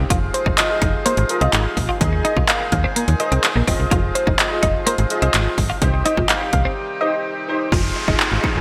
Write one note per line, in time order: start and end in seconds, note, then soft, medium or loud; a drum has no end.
0.10 0.32 F1 loud
0.10 1.99 C3 medium
0.10 1.99 F3 medium
0.10 5.78 G#3 medium
0.10 7.68 D#4 medium
0.10 1.99 F4 loud
0.10 0.17 F4 medium
0.10 kick loud
0.10 closed hi-hat loud
0.34 0.42 C5 medium
0.34 muted clean electric guitar stroke soft
0.34 closed hi-hat medium
0.46 0.53 F1 loud
0.46 0.53 D#4 medium
0.46 kick medium
0.57 0.67 F4 medium
0.57 0.67 G#4 medium
0.57 0.67 D#5 medium
0.57 0.74 D#5 medium
0.57 clap loud
0.57 closed hi-hat medium
0.69 1.17 F4 medium
0.69 1.17 G#4 medium
0.69 1.17 D#5 medium
0.82 0.96 F1 loud
0.82 0.89 D#4 medium
0.82 0.90 D#5 medium
0.82 kick medium
0.82 closed hi-hat medium
1.06 1.13 A#3 medium
1.06 1.14 C5 medium
1.06 closed hi-hat loud
1.17 1.25 G#1 medium
1.17 muted clean electric guitar stroke soft
1.17 closed hi-hat medium
1.29 1.39 F4 medium
1.29 1.39 G#4 medium
1.29 1.39 A#4 medium
1.29 closed hi-hat medium
1.41 1.48 C2 loud
1.41 1.48 C4 medium
1.41 1.88 F4 medium
1.41 1.89 G#4 medium
1.41 1.49 D#5 medium
1.41 1.89 F5 medium
1.41 closed hi-hat medium
1.53 1.68 G#1 medium
1.53 1.60 D#4 medium
1.53 clap loud
1.53 closed hi-hat loud
1.77 1.91 A#1 medium
1.77 muted clean electric guitar stroke soft
1.77 kick medium
1.77 open hi-hat medium
1.89 1.96 F4 medium
2.00 2.22 D#2 loud
2.00 3.66 A#2 medium
2.00 3.66 D#3 medium
2.00 2.76 G#4 loud
2.00 3.66 G#4 loud
2.00 2.76 A#4 medium
2.00 2.76 D#5 loud
2.00 kick loud
2.00 closed hi-hat medium
2.13 muted clean electric guitar stroke soft
2.25 2.32 D#4 medium
2.25 2.33 D#5 medium
2.25 closed hi-hat medium
2.37 2.44 C2 medium
2.37 2.44 F4 medium
2.37 kick medium
2.48 2.56 D#4 medium
2.48 2.64 F5 medium
2.48 clap loud
2.48 closed hi-hat medium
2.61 muted clean electric guitar stroke soft
2.72 2.87 D#2 loud
2.72 2.80 F5 medium
2.72 kick medium
2.72 closed hi-hat medium
2.84 2.91 C4 medium
2.96 3.03 A#3 medium
2.96 closed hi-hat loud
3.08 3.15 D#2 medium
3.08 closed hi-hat medium
3.20 3.58 G#4 medium
3.20 3.58 A#4 medium
3.20 3.58 C5 medium
3.20 3.28 D#5 medium
3.20 muted clean electric guitar stroke soft
3.20 closed hi-hat medium
3.32 3.39 C2 medium
3.32 3.39 C4 medium
3.32 closed hi-hat medium
3.44 muted clean electric guitar stroke soft
3.44 clap loud
3.44 closed hi-hat medium
3.56 3.63 A#1 medium
3.56 3.63 A#3 medium
3.67 3.75 F1 loud
3.67 7.68 C3 medium
3.67 5.80 F3 medium
3.67 3.75 C4 medium
3.67 4.24 F4 medium
3.67 5.80 F4 medium
3.67 4.25 G#4 medium
3.67 4.25 D#5 loud
3.67 kick medium
3.67 open hi-hat medium
3.80 3.87 C2 medium
3.91 4.13 F1 loud
3.91 3.98 F4 medium
3.91 kick loud
3.91 closed hi-hat loud
4.15 4.23 C5 medium
4.15 muted clean electric guitar stroke soft
4.15 closed hi-hat medium
4.27 4.34 F1 loud
4.27 4.34 D#4 medium
4.27 kick medium
4.39 4.48 F4 medium
4.39 4.48 G#4 medium
4.39 4.55 D#5 medium
4.39 4.49 D#5 medium
4.39 clap loud
4.39 closed hi-hat medium
4.51 4.98 F4 medium
4.51 4.98 G#4 medium
4.51 4.98 D#5 medium
4.63 4.77 F1 medium
4.63 4.70 D#4 medium
4.63 4.71 D#5 medium
4.63 kick medium
4.63 closed hi-hat medium
4.87 4.94 A#3 medium
4.87 4.95 C5 medium
4.87 closed hi-hat loud
4.98 5.06 G#1 medium
4.98 muted clean electric guitar stroke soft
4.98 closed hi-hat medium
5.10 5.20 F4 medium
5.10 5.20 G#4 medium
5.10 5.20 D#5 medium
5.10 closed hi-hat medium
5.22 5.29 C2 medium
5.22 5.29 C4 medium
5.22 5.69 F4 medium
5.22 5.70 G#4 medium
5.22 5.70 C5 loud
5.22 5.30 D#5 medium
5.22 closed hi-hat medium
5.34 5.49 G#1 loud
5.34 5.41 D#4 medium
5.34 clap loud
5.34 closed hi-hat loud
5.58 5.72 G1 loud
5.58 muted clean electric guitar stroke soft
5.58 kick medium
5.58 open hi-hat medium
5.70 5.77 F4 medium
5.81 6.03 C2 loud
5.81 7.71 D#3 medium
5.81 7.71 G3 medium
5.81 6.57 D#4 loud
5.81 6.57 G4 medium
5.81 7.71 G4 medium
5.81 6.57 C5 loud
5.81 kick loud
5.81 closed hi-hat medium
5.94 muted clean electric guitar stroke soft
6.05 6.13 D#4 medium
6.05 6.13 D#5 medium
6.05 closed hi-hat medium
6.17 6.25 A#1 loud
6.17 6.24 F4 medium
6.17 kick medium
6.29 6.36 D#4 medium
6.29 6.45 F5 medium
6.29 clap loud
6.29 closed hi-hat loud
6.41 muted clean electric guitar stroke soft
6.53 6.68 C2 medium
6.53 6.61 F5 medium
6.53 kick medium
6.53 closed hi-hat medium
6.65 6.72 C4 medium
7.00 7.38 D#4 medium
7.00 7.39 G4 medium
7.00 7.39 C5 medium
7.00 7.09 D#5 medium
7.48 7.72 D#4 medium
7.48 7.72 G4 medium
7.48 7.72 C5 medium
7.72 7.94 F1 loud
7.72 8.61 C3 medium
7.72 8.61 F3 medium
7.72 8.61 G#3 medium
7.72 8.61 D#4 medium
7.72 7.79 F4 medium
7.72 8.61 F4 medium
7.72 kick loud
7.72 downlifter medium
7.96 muted clean electric guitar stroke soft
8.08 8.15 F1 medium
8.08 8.46 D#4 medium
8.08 8.15 D#4 medium
8.08 8.46 F4 medium
8.08 8.46 G#4 medium
8.08 kick medium
8.20 clap loud
8.32 8.39 G#1 medium
8.44 8.51 D#4 medium
8.44 kick medium
8.56 8.61 F1 medium
8.56 8.61 D#4 loud
8.56 8.61 F4 medium
8.56 8.61 G#4 loud